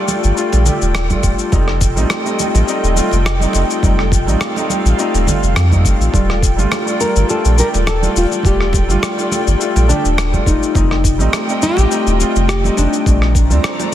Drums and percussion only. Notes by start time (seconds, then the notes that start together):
0.08 muted conga, high conga, cabasa
0.24 cabasa
0.37 cabasa
0.53 muted conga, cabasa
0.66 high conga, low conga, cabasa
0.82 cabasa
0.95 cross-stick, cabasa
1.10 kick, muted conga, high conga, cabasa
1.23 kick, cabasa
1.39 cabasa
1.52 kick, muted conga, high conga, cabasa
1.68 cross-stick
1.81 kick, cabasa
1.97 high conga, cabasa
2.10 cross-stick, muted conga, cabasa
2.26 cabasa
2.39 high conga, cabasa
2.55 muted conga, cabasa
2.68 cabasa
2.84 cabasa
2.96 high conga, cabasa
3.11 muted conga, cabasa
3.26 cross-stick, cabasa
3.40 high conga, cabasa
3.53 muted conga, cabasa
3.70 cabasa
3.83 kick, high conga, cabasa
3.99 cross-stick
4.12 kick, muted conga, cabasa
4.27 high conga, cabasa
4.41 cross-stick, cabasa
4.56 muted conga, cabasa
4.70 high conga, cabasa
4.86 cabasa
4.99 cabasa
5.14 muted conga, cabasa
5.27 kick, high conga, low conga, cabasa
5.43 cabasa
5.56 cross-stick, muted conga, cabasa
5.72 kick, high conga, cabasa
5.85 kick, cabasa
6.01 cabasa
6.14 kick, high conga, cabasa
6.30 cross-stick, muted conga
6.42 kick, cabasa
6.58 high conga, cabasa
6.72 cross-stick, muted conga, cabasa
6.87 cabasa
7.01 high conga, cabasa
7.16 cabasa
7.29 muted conga, cabasa
7.45 cabasa
7.58 high conga, cabasa
7.74 muted conga, cabasa
7.87 cross-stick, cabasa
8.03 high conga, cabasa
8.16 cabasa
8.31 muted conga, cabasa
8.43 kick, high conga, cabasa
8.61 cross-stick
8.73 kick, muted conga, cabasa
8.89 high conga, cabasa
9.03 cross-stick, cabasa
9.19 cabasa
9.31 muted conga, high conga, cabasa
9.47 cabasa
9.61 cabasa
9.76 muted conga, cabasa
9.88 high conga, low conga, cabasa
10.05 cabasa
10.18 cross-stick, cabasa
10.33 kick, muted conga, high conga, cabasa
10.46 kick, cabasa
10.63 cabasa
10.75 kick, muted conga, high conga, cabasa
10.91 cross-stick
11.04 kick, cabasa
11.19 high conga, cabasa
11.33 cross-stick, muted conga, cabasa
11.49 cabasa
11.62 high conga, cabasa
11.77 muted conga, cabasa
11.92 cabasa
12.07 cabasa
12.20 high conga, cabasa
12.36 muted conga, cabasa
12.49 cross-stick, cabasa
12.64 high conga, cabasa
12.77 muted conga, cabasa
12.93 cabasa
13.06 kick, high conga, cabasa
13.22 cross-stick
13.35 kick, muted conga, cabasa
13.51 high conga, cabasa
13.64 cross-stick, cabasa
13.79 muted conga, cabasa